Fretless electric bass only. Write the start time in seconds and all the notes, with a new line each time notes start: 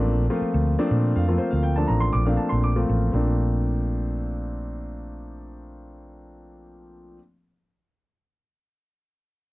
Already playing: A1
0.17 A#1
0.41 muted fretless electric bass stroke
0.54 D2
0.91 A#2
1.16 F2
1.53 D2
1.89 A1
2.14 A#1
2.52 A#1
2.89 A1
3.13 A#1